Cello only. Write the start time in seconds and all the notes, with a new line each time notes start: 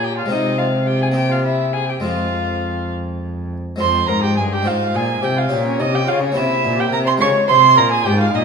Already playing: A#2
0.30 C3
2.03 F2
3.81 F2
4.09 G#2
4.37 G2
4.65 G#2
4.95 A#2
5.22 C3
5.51 A#2
5.80 C3
6.09 C#3
6.37 C3
6.65 A#2
6.92 C3
7.21 C#3
7.50 C3
7.78 A#2
8.07 G#2
8.36 A#2